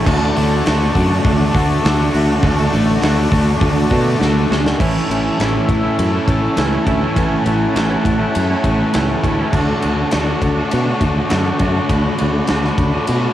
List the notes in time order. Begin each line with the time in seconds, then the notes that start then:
Already playing: C#4 C#5 A5
0.06 D2 D3 A3 D4 F#4 A4 D5, kick, crash
0.35 D2 A3 D4 F#4 A4, open hi-hat
0.65 D2 D3 A3 D4 F#4 A4, snare, open hi-hat
0.93 F#2 D3 A3 D4 F#4 A4, kick, open hi-hat
1.24 D2 D3 A3 D4 F#4, kick, open hi-hat
1.52 D2 A3 D4 F#4 A4, kick, open hi-hat
1.57 A3
1.82 D2 D3 A3 D4 F#4 A4, open hi-hat
1.86 snare
2.13 D2 D3 A3 D4 F#4, open hi-hat
2.41 D2 D3 A3 D4 F#4 A4, kick, open hi-hat
2.71 A1 D4 F#4 A4, open hi-hat
2.75 A3
3.00 D2 D3 A3 D4 F#4 A4, snare, open hi-hat
3.04 A3
3.30 D2 D3 A3 D4 F#4 A4, kick, open hi-hat
3.60 D2 D3 A3 D4 F#4, kick, open hi-hat
3.89 B2 A3 D4 F#4 A4, kick, open hi-hat
4.19 D2 D3 A3 D4 F#4 A4, snare
4.49 D2 D3 A3 C#4 D4 F#4, snare
4.66 snare
4.79 A1 A2 E3 A3 C#4 E4 A4 C#5 E5 A5, kick, crash
5.09 A1 E3 A3 C#4 E4 A4, ride
5.38 A1 A2 E3 A3 C#4 E4 A4, snare, ride
5.53 A3 C#4 E4 A4
5.68 A1 A2 E3 A3 C#4 E4, muted clean electric guitar stroke, muted overdriven electric guitar stroke, kick, ride
5.83 A3 C#4 E4 A4
5.97 F#2 A2 E3 A3 C#4 E4, ride
6.13 A3 C#4 E4 A4
6.28 A1 A3 C#4 E4 A4, kick, ride
6.41 A3 C#4 E4 A4
6.55 C#2 A2 E3 A3 C#4 E4 A4, snare, ride
6.71 C#4 E4
6.84 D2 A2 E3 A3 C#4 E4 A4, kick, ride
7.00 A3 C#4 E4 A4
7.15 A1 A2 E3 A3 C#4 E4 A4 F#5, kick, ride
7.44 A1 E3 A3 C#4 E4 A4, ride
7.73 A1 A2 E3 A3 C#4 E4 A4, ride
7.77 snare
7.89 A3 C#4 E4 A4
8.04 A1 A2 E3 A3 C#4 E4, muted overdriven electric guitar stroke, muted clean electric guitar stroke, kick, ride
8.18 A3 C#4 E4 A4
8.34 F#2 A2 E3 A3 C#4 E4, ride
8.49 A3 C#4 E4 A4
8.64 A1 A3 C#4 E4 A4, kick, ride
8.79 A3 C#4 E4 A4
8.92 C#2 A2 E3 A3 C#4 E4 A4, snare, ride
9.08 C#4 E4
9.23 D2 A2 E3 G#3 A3 C#4 E4 A4, kick, ride
9.38 G#3 A3 C#4 E4 A4
9.53 D2 D3 A3 D4 F#4 A4 D5, kick, crash
9.81 D2 D3 A3 D4 F#4, ride
9.86 A4
10.11 D2 D3 A3 D4, snare, ride
10.16 F#4 A4
10.25 A3 F#4 A4
10.30 D4 F#4
10.40 D2 D3 A3 D4 F#4, muted clean electric guitar stroke, muted overdriven electric guitar stroke, kick, ride
10.57 A3 D4 F#4 A4
10.71 B2 D3 A3 D4 F#4, ride
10.86 A3 D4 F#4 A4
11.00 D2 A3 D4 F#4 A4, kick, ride
11.15 D4 F#4 A4
11.29 F#2 D3 A3 D4 F#4 A4, snare, ride
11.44 A3 F#4
11.59 F#2 D3 A3 D4 F#4, kick, ride
11.63 A4
11.75 A3 D4 F#4 A4
11.89 D2 D3 A3 D4 F#4 A4 B5, kick, ride
12.17 D3 A3 D4 F#4, ride
12.21 D2 A4
12.47 D2 D3 A3 D4 F#4 A4, snare, ride
12.64 A3 D4 F#4 A4, snare
12.78 D2 D3 A3 D4 F#4, muted clean electric guitar stroke, muted overdriven electric guitar stroke, kick, ride
12.94 A3 D4 F#4 A4
13.07 B2 D3 A3 D4 F#4, ride
13.23 A3 D4 F#4 A4